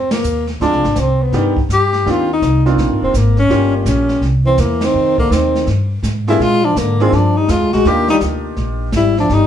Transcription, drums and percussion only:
0.11 snare medium
0.11 ride medium
0.24 hi-hat pedal medium
0.47 snare soft
0.60 brush sweep soft
0.60 kick soft
0.60 snare soft
0.73 snare soft
0.84 snare soft
0.96 kick soft
0.96 snare medium
0.96 hi-hat pedal medium
1.32 brush sweep soft
1.32 kick soft
1.32 snare soft
1.57 kick medium
1.69 kick soft
1.69 snare medium
1.69 hi-hat pedal medium
1.93 snare soft
2.06 brush sweep soft
2.06 kick soft
2.06 snare soft
2.42 kick soft
2.42 snare medium
2.42 hi-hat pedal soft
2.66 snare soft
2.78 brush sweep soft
2.78 kick soft
2.78 snare soft
3.14 kick soft
3.14 snare medium
3.14 hi-hat pedal medium
3.37 snare soft
3.49 brush sweep soft
3.49 kick soft
3.49 snare soft
3.86 kick soft
3.86 snare medium
3.86 hi-hat pedal medium
4.09 snare soft
4.21 brush sweep soft
4.21 kick soft
4.21 snare soft
4.58 kick soft
4.58 snare medium
4.58 hi-hat pedal medium
4.81 snare medium
4.81 ride medium
4.94 brush sweep soft
5.18 kick medium
5.31 kick soft
5.31 snare medium
5.31 hi-hat pedal medium
5.55 snare soft
5.66 brush sweep medium
5.66 kick soft
5.66 snare soft
6.03 kick soft
6.03 snare medium
6.03 hi-hat pedal medium
6.27 snare soft
6.40 brush sweep medium
6.40 kick soft
6.40 snare soft
6.76 kick soft
6.76 snare medium
6.76 hi-hat pedal soft
7.00 snare soft
7.12 brush sweep soft
7.12 kick soft
7.12 snare soft
7.48 kick soft
7.48 snare medium
7.48 hi-hat pedal medium
7.73 snare soft
7.85 brush sweep medium
7.85 kick soft
7.85 snare soft
8.08 snare medium
8.21 kick soft
8.21 snare medium
8.21 hi-hat pedal soft
8.57 brush sweep soft
8.57 kick soft
8.57 snare soft
8.92 kick soft
8.92 snare medium
8.92 hi-hat pedal medium
9.17 snare soft
9.29 brush sweep soft
9.29 kick soft
9.29 snare soft

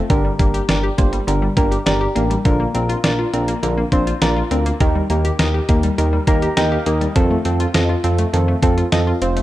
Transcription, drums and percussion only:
0.10 kick loud
0.10 closed hi-hat medium
0.39 kick medium
0.39 closed hi-hat medium
0.54 closed hi-hat medium
0.69 snare loud
0.69 closed hi-hat medium
0.98 kick medium
0.98 closed hi-hat medium
1.13 closed hi-hat medium
1.28 closed hi-hat medium
1.57 kick medium
1.57 closed hi-hat medium
1.72 closed hi-hat soft
1.87 snare loud
1.87 closed hi-hat medium
2.16 closed hi-hat medium
2.31 closed hi-hat soft
2.45 kick loud
2.45 closed hi-hat medium
2.75 closed hi-hat medium
2.90 closed hi-hat medium
3.04 snare loud
3.04 closed hi-hat medium
3.34 closed hi-hat medium
3.48 closed hi-hat medium
3.63 closed hi-hat medium
3.92 kick medium
3.92 closed hi-hat medium
4.07 closed hi-hat soft
4.22 snare loud
4.22 closed hi-hat medium
4.51 closed hi-hat medium
4.66 closed hi-hat soft
4.80 kick loud
4.80 closed hi-hat medium
5.10 closed hi-hat medium
5.25 closed hi-hat medium
5.39 snare loud
5.39 closed hi-hat medium
5.69 kick medium
5.69 closed hi-hat medium
5.83 closed hi-hat medium
5.98 closed hi-hat medium
6.27 kick medium
6.27 closed hi-hat medium
6.42 closed hi-hat soft
6.57 snare loud
6.57 closed hi-hat medium
6.86 closed hi-hat medium
7.01 closed hi-hat soft
7.16 kick loud
7.16 closed hi-hat medium
7.45 closed hi-hat medium
7.60 closed hi-hat medium
7.74 snare loud
7.74 closed hi-hat medium
8.04 closed hi-hat medium
8.18 closed hi-hat medium
8.34 closed hi-hat medium
8.63 kick medium
8.63 closed hi-hat medium
8.78 closed hi-hat soft
8.92 snare loud
8.92 closed hi-hat medium
9.22 closed hi-hat medium
9.37 closed hi-hat soft

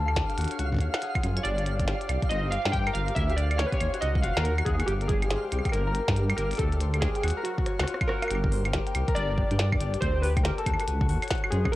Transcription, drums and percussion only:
0.08 claves medium
0.16 kick loud
0.16 snare loud
0.16 closed hi-hat medium
0.30 closed hi-hat soft
0.38 closed hi-hat medium
0.41 closed hi-hat medium
0.44 closed hi-hat medium
0.48 closed hi-hat soft
0.51 closed hi-hat medium
0.59 closed hi-hat medium
0.72 kick medium
0.74 kick medium
0.76 kick medium
0.79 kick medium
0.79 closed hi-hat medium
0.94 snare loud
0.94 closed hi-hat medium
0.94 claves soft
1.02 closed hi-hat medium
1.15 kick loud
1.15 closed hi-hat soft
1.15 claves medium
1.24 closed hi-hat medium
1.24 claves soft
1.37 closed hi-hat medium
1.37 claves medium
1.45 closed hi-hat medium
1.58 closed hi-hat soft
1.66 closed hi-hat medium
1.80 kick loud
1.80 closed hi-hat medium
1.88 snare loud
1.88 closed hi-hat medium
2.01 closed hi-hat soft
2.09 closed hi-hat medium
2.09 claves medium
2.22 kick loud
2.22 closed hi-hat soft
2.31 closed hi-hat medium
2.52 closed hi-hat medium
2.65 snare loud
2.65 closed hi-hat soft
2.73 kick loud
2.73 closed hi-hat medium
2.87 closed hi-hat soft
2.87 claves medium
2.95 closed hi-hat medium
3.08 closed hi-hat medium
3.16 kick loud
3.16 closed hi-hat medium
3.30 closed hi-hat soft
3.38 closed hi-hat medium
3.51 closed hi-hat medium
3.51 claves medium
3.59 snare loud
3.59 closed hi-hat medium
3.72 kick loud
3.72 closed hi-hat soft
3.81 closed hi-hat medium
3.81 claves medium
3.94 closed hi-hat soft
4.02 closed hi-hat medium
4.15 kick loud
4.24 closed hi-hat medium
4.37 snare loud
4.37 closed hi-hat medium
4.37 claves medium
4.45 closed hi-hat medium
4.58 closed hi-hat soft
4.58 claves medium
4.66 kick loud
4.66 closed hi-hat medium
4.80 closed hi-hat soft
4.80 claves medium
4.88 closed hi-hat medium
5.01 closed hi-hat soft
5.09 kick loud
5.09 closed hi-hat medium
5.22 closed hi-hat medium
5.22 claves medium
5.31 snare loud
5.31 closed hi-hat medium
5.52 closed hi-hat medium
5.52 claves soft
5.59 claves soft
5.65 kick loud
5.65 closed hi-hat soft
5.65 claves soft
5.69 claves soft
5.73 closed hi-hat medium
5.95 closed hi-hat medium
6.08 kick loud
6.08 snare loud
6.08 closed hi-hat medium
6.16 closed hi-hat medium
6.30 closed hi-hat soft
6.30 claves medium
6.38 closed hi-hat medium
6.51 closed hi-hat soft
6.53 closed hi-hat soft
6.55 closed hi-hat soft
6.57 closed hi-hat soft
6.59 kick loud
6.59 closed hi-hat medium
6.72 closed hi-hat soft
6.81 closed hi-hat medium
6.94 closed hi-hat medium
6.94 claves medium
7.02 kick loud
7.02 snare loud
7.02 closed hi-hat medium
7.15 closed hi-hat soft
7.23 closed hi-hat medium
7.23 claves medium
7.28 closed hi-hat medium
7.30 closed hi-hat medium
7.45 closed hi-hat medium
7.58 kick loud
7.66 cross-stick medium
7.66 closed hi-hat medium
7.79 snare loud
7.79 closed hi-hat medium
7.79 claves medium
7.83 cross-stick medium
7.88 closed hi-hat medium
7.94 cross-stick medium
8.01 kick loud
8.01 closed hi-hat soft
8.01 claves medium
8.09 cross-stick loud
8.22 cross-stick medium
8.22 closed hi-hat medium
8.22 claves medium
8.28 closed hi-hat medium
8.28 claves soft
8.35 claves soft
8.44 kick loud
8.52 open hi-hat medium
8.65 closed hi-hat medium
8.65 claves medium
8.73 kick loud
8.73 snare loud
8.73 closed hi-hat medium
8.87 closed hi-hat soft
8.95 closed hi-hat medium
8.95 claves medium
9.08 kick loud
9.08 closed hi-hat medium
9.16 closed hi-hat medium
9.38 kick loud
9.51 closed hi-hat medium
9.59 snare loud
9.59 closed hi-hat medium
9.72 kick loud
9.72 claves medium
9.81 closed hi-hat medium
9.94 closed hi-hat medium
10.02 kick loud
10.02 closed hi-hat medium
10.23 open hi-hat medium
10.37 kick loud
10.37 closed hi-hat medium
10.37 claves medium
10.45 snare loud
10.45 closed hi-hat medium
10.58 closed hi-hat soft
10.66 kick loud
10.66 closed hi-hat medium
10.66 claves medium
10.74 claves soft
10.80 closed hi-hat medium
10.80 claves soft
10.88 closed hi-hat medium
11.01 kick loud
11.09 open hi-hat medium
11.22 closed hi-hat medium
11.22 closed hi-hat soft
11.22 claves medium
11.28 snare loud
11.28 closed hi-hat soft
11.31 kick loud
11.31 closed hi-hat medium
11.35 closed hi-hat soft
11.38 closed hi-hat soft
11.44 claves medium
11.52 closed hi-hat medium
11.65 kick loud
11.65 claves medium

